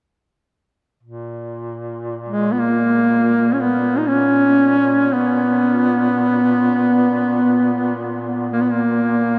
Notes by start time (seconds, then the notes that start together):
1.03 A#2
2.28 G#3
2.52 B3
2.59 A#3
3.54 C#4
3.61 B3
3.98 D#4
4.07 C#4
5.13 B3
8.53 A#3
8.61 B3
8.72 A#3